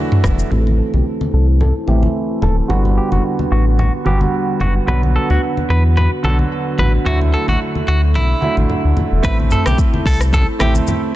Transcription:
0.00 0.50 E3 medium
0.00 0.53 F#3 medium
0.00 0.51 A3 medium
0.00 0.47 D4 medium
0.00 0.53 D4 medium
0.00 0.47 F#4 medium
0.00 0.53 F#4 medium
0.00 0.49 A4 medium
0.00 0.49 E5 medium
0.12 mid tom medium
0.24 0.43 E1 medium
0.24 kick loud
0.24 cross-stick loud
0.24 high conga medium
0.24 low conga medium
0.24 shaker medium
0.39 shaker medium
0.50 0.81 A1 loud
0.50 1.25 E3 medium
0.50 1.25 A3 medium
0.50 1.26 C4 medium
0.50 2.67 E4 medium
0.50 0.59 G4 medium
0.50 2.67 A4 medium
0.50 0.64 B4 loud
0.50 2.67 C5 medium
0.50 2.67 A5 medium
0.50 low conga medium
0.59 1.29 A4 medium
0.67 high conga medium
0.79 0.92 A4 medium
0.93 1.02 B1 medium
0.93 1.04 G4 medium
0.93 high conga medium
1.21 high conga medium
1.33 1.72 C2 medium
1.33 1.46 A4 medium
1.61 1.74 A4 medium
1.61 low conga medium
1.86 2.07 A1 medium
1.86 2.42 E3 medium
1.86 2.43 A3 medium
1.86 2.43 C4 medium
1.86 2.43 E4 medium
1.86 2.01 G4 medium
1.86 high conga medium
2.03 high conga medium
2.42 2.62 D1 medium
2.42 2.55 A4 medium
2.42 high conga medium
2.42 low conga medium
2.68 2.99 G1 loud
2.68 3.43 D3 medium
2.68 3.44 G3 medium
2.68 4.85 G3 medium
2.68 3.44 B3 medium
2.68 9.20 D4 medium
2.68 2.83 F#4 loud
2.68 3.44 F#4 medium
2.68 7.02 B4 medium
2.68 7.02 F#5 medium
2.68 low conga medium
2.85 high conga medium
2.97 3.10 G4 medium
3.12 3.20 F#1 medium
3.12 3.23 F#4 medium
3.12 high conga medium
3.39 high conga medium
3.51 3.90 A1 medium
3.51 3.64 F#4 medium
3.79 3.92 F#4 medium
3.79 low conga medium
4.05 4.25 G1 medium
4.05 4.60 D3 medium
4.05 4.61 G3 medium
4.05 4.61 B3 medium
4.05 4.62 F#4 medium
4.05 4.19 G4 medium
4.05 high conga medium
4.21 high conga medium
4.60 4.80 F#1 medium
4.60 4.73 F#4 medium
4.60 high conga medium
4.60 low conga medium
4.86 5.18 B1 loud
4.86 5.61 D3 medium
4.86 5.62 F#3 medium
4.86 5.62 B3 medium
4.86 7.04 F#4 medium
4.86 5.63 F#4 medium
4.86 5.01 B4 loud
4.86 low conga medium
5.03 high conga medium
5.16 5.28 A4 medium
5.30 5.39 D2 medium
5.30 5.41 F#4 medium
5.30 high conga medium
5.57 high conga medium
5.69 6.08 E2 loud
5.69 5.83 B4 medium
5.97 6.10 B4 medium
5.97 low conga medium
6.23 6.43 B1 loud
6.23 6.79 D3 medium
6.23 6.79 F#3 medium
6.23 6.79 B3 medium
6.23 6.80 F#4 medium
6.23 6.37 A4 medium
6.23 high conga medium
6.39 high conga medium
6.78 6.98 A1 medium
6.78 6.92 B4 medium
6.78 high conga medium
6.78 low conga medium
7.04 7.36 D2 loud
7.04 7.79 D3 medium
7.04 7.80 F#3 medium
7.04 7.80 A3 medium
7.04 7.81 E4 medium
7.04 9.22 F#4 medium
7.04 7.19 F#4 loud
7.04 9.22 A4 medium
7.04 9.22 E5 medium
7.04 low conga medium
7.21 high conga medium
7.34 7.46 A4 medium
7.48 7.57 A1 medium
7.48 7.59 F#4 medium
7.48 high conga medium
7.75 high conga medium
7.88 8.16 D2 medium
7.88 8.01 F#4 medium
8.15 8.34 B1 medium
8.15 8.55 E4 medium
8.15 low conga medium
8.41 8.97 D3 medium
8.41 8.97 F#3 medium
8.41 8.97 A3 medium
8.41 8.98 E4 medium
8.41 high conga medium
8.57 8.66 A1 medium
8.57 high conga medium
8.70 low conga medium
8.84 8.93 D2 medium
8.97 high conga medium
8.97 low conga medium
9.12 9.20 E1 medium
9.23 9.54 A1 loud
9.23 9.98 A3 medium
9.23 9.98 C4 medium
9.23 11.15 E4 medium
9.23 9.99 E4 medium
9.23 11.15 A4 medium
9.23 9.37 B4 loud
9.23 11.15 C5 medium
9.23 11.15 A5 medium
9.23 kick loud
9.23 low conga medium
9.23 shaker medium
9.40 high conga medium
9.51 9.64 A4 medium
9.51 mid tom medium
9.51 shaker medium
9.66 9.75 B1 loud
9.66 9.77 G4 medium
9.66 cross-stick loud
9.66 high conga medium
9.66 shaker medium
9.78 kick loud
9.78 shaker medium
9.94 high conga medium
10.06 10.45 C2 medium
10.06 10.19 A4 medium
10.06 kick loud
10.06 open hi-hat medium
10.06 shaker medium
10.21 cross-stick medium
10.21 shaker medium
10.33 10.46 A4 medium
10.33 kick medium
10.33 low conga medium
10.33 shaker medium
10.59 10.80 A1 loud
10.59 11.15 A3 medium
10.59 11.15 C4 medium
10.59 11.15 E4 medium
10.59 10.73 G4 medium
10.59 cross-stick loud
10.59 high conga medium
10.59 shaker medium
10.75 high conga medium
10.75 shaker medium
10.87 high conga medium
10.87 low conga medium
10.87 shaker medium

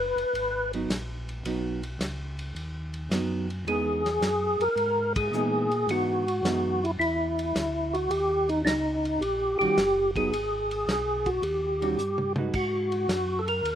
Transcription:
0.00 0.14 F#1 medium
0.00 0.72 B4 medium
0.16 0.25 F#1 soft
0.16 ride soft
0.33 0.88 G#1 medium
0.33 ride medium
0.73 0.89 F#3 medium
0.73 0.89 B3 medium
0.73 0.89 D#4 medium
0.73 ride soft
0.89 1.43 A#1 medium
0.89 snare medium
0.89 hi-hat pedal soft
0.89 ride medium
1.29 ride soft
1.43 1.98 B1 medium
1.43 1.80 F#3 medium
1.43 1.80 B3 medium
1.43 1.81 D#4 medium
1.43 ride medium
1.83 ride soft
1.99 2.54 C#2 medium
1.99 snare medium
1.99 hi-hat pedal soft
1.99 ride medium
2.39 ride soft
2.55 3.09 D#2 medium
2.55 ride soft
2.94 ride soft
3.10 3.65 F#2 medium
3.10 3.46 F#3 medium
3.10 3.47 B3 medium
3.10 3.47 D#4 medium
3.10 snare medium
3.10 hi-hat pedal soft
3.10 ride medium
3.50 ride soft
3.65 4.20 E2 medium
3.65 4.02 E3 medium
3.65 4.02 G#3 medium
3.65 4.02 B3 medium
3.65 4.02 D#4 medium
3.65 4.64 G#4 medium
3.65 ride soft
4.06 snare soft
4.06 ride soft
4.21 4.57 F#2 medium
4.21 snare medium
4.21 hi-hat pedal soft
4.21 ride medium
4.59 4.68 F#2 soft
4.59 5.13 A#4 loud
4.59 ride soft
4.76 5.31 G#2 medium
4.76 ride soft
5.16 5.91 G#4 medium
5.16 kick medium
5.16 ride medium
5.32 5.86 A#2 medium
5.32 5.68 E3 medium
5.32 5.68 G#3 medium
5.32 5.68 B3 medium
5.32 5.68 D#4 medium
5.32 hi-hat pedal soft
5.71 ride soft
5.87 6.42 G#2 medium
5.87 6.24 E3 medium
5.87 6.24 G#3 medium
5.87 6.24 B3 medium
5.87 6.24 D#4 medium
5.87 6.86 F#4 medium
5.87 ride medium
6.28 ride soft
6.43 6.97 F#2 medium
6.43 6.79 E3 soft
6.43 6.79 G#3 soft
6.43 6.80 B3 medium
6.43 6.80 D#4 medium
6.43 snare medium
6.43 hi-hat pedal medium
6.43 ride medium
6.84 6.91 E4 medium
6.84 ride soft
6.99 7.53 E2 medium
6.99 7.96 E4 medium
6.99 ride medium
7.39 ride soft
7.55 8.09 D2 medium
7.55 snare medium
7.55 hi-hat pedal medium
7.55 ride medium
7.93 8.11 F#4 medium
7.93 ride soft
8.09 8.64 D#2 medium
8.09 8.50 G4 medium
8.09 ride medium
8.49 8.62 D#4 medium
8.49 ride soft
8.65 9.19 C#2 medium
8.65 8.68 D4 medium
8.65 9.23 D#4 medium
8.65 snare medium
8.65 hi-hat pedal medium
8.65 ride medium
9.05 ride soft
9.20 9.56 A#1 medium
9.20 9.58 G4 medium
9.20 ride soft
9.59 9.68 A#1 soft
9.59 9.76 D#3 medium
9.59 9.76 G3 medium
9.59 9.77 C#4 medium
9.59 9.77 F#4 medium
9.59 10.11 G4 loud
9.59 ride soft
9.77 10.31 F#1 medium
9.77 snare medium
9.77 hi-hat pedal soft
9.77 ride medium
10.16 10.31 F#3 medium
10.16 10.31 B3 medium
10.16 10.32 D#4 medium
10.16 11.30 G#4 medium
10.16 kick soft
10.16 ride soft
10.32 10.86 G#1 medium
10.32 ride medium
10.71 ride soft
10.87 11.41 B1 medium
10.87 snare medium
10.87 hi-hat pedal soft
10.87 ride medium
11.26 11.44 F#4 medium
11.26 kick soft
11.26 ride soft
11.42 11.96 D#2 medium
11.42 12.33 G4 medium
11.42 ride medium
11.82 11.97 D#3 medium
11.82 11.97 G3 medium
11.82 11.98 C#4 medium
11.82 11.97 F#4 medium
11.82 ride soft
11.97 12.52 G2 medium
11.97 hi-hat pedal medium
12.18 mid tom medium
12.36 12.53 G#3 soft
12.36 12.53 D#4 soft
12.36 12.53 F#4 medium
12.36 12.53 B4 medium
12.36 mid tom medium
12.53 13.07 G#2 medium
12.53 13.41 F#4 medium
12.53 kick medium
12.53 crash medium
12.92 ride soft
13.08 13.62 F#2 medium
13.08 snare medium
13.08 hi-hat pedal soft
13.08 ride medium
13.39 13.48 A4 medium
13.48 13.75 A#4 medium
13.48 ride soft
13.63 13.75 D#2 medium
13.63 ride medium

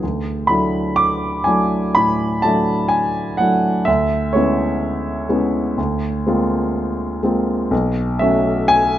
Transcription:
0.03 0.49 D2 soft
0.47 1.42 F#3 soft
0.47 1.43 A3 soft
0.47 1.43 D4 soft
0.47 1.43 E4 soft
0.47 0.96 B5 medium
0.96 1.46 D6 medium
1.44 1.92 F#3 soft
1.44 1.92 A3 soft
1.44 1.93 D4 soft
1.44 1.93 E4 soft
1.44 1.95 G#5 medium
1.95 2.43 A2 soft
1.95 2.44 B5 medium
2.42 3.35 F#3 soft
2.42 3.35 A3 soft
2.42 3.35 D4 soft
2.42 3.35 E4 soft
2.42 2.90 A5 medium
2.88 3.38 G#5 medium
3.37 3.84 F#3 soft
3.37 3.84 A3 soft
3.37 3.84 D4 soft
3.37 3.84 E4 soft
3.37 3.87 F#5 medium
3.85 4.33 D2 medium
3.85 4.34 E5 medium
4.33 5.25 G#3 soft
4.33 5.26 B3 soft
4.33 5.26 C#4 soft
4.33 5.26 E4 soft
4.33 7.22 C#5 medium
5.29 5.74 G#3 soft
5.29 5.74 B3 soft
5.29 5.74 C#4 soft
5.29 5.74 E4 soft
5.78 6.25 D2 soft
6.27 7.19 G#3 soft
6.27 7.19 A#3 soft
6.27 7.19 C4 soft
6.27 7.20 F4 soft
7.23 7.68 G#3 soft
7.23 7.68 A#3 soft
7.23 7.68 C4 soft
7.23 7.68 F4 soft
7.71 8.19 B1 medium
8.19 8.99 F#3 soft
8.19 8.99 A3 soft
8.19 8.99 C#4 soft
8.19 8.99 F#4 soft
8.19 8.69 E5 medium
8.68 8.99 G#5 loud

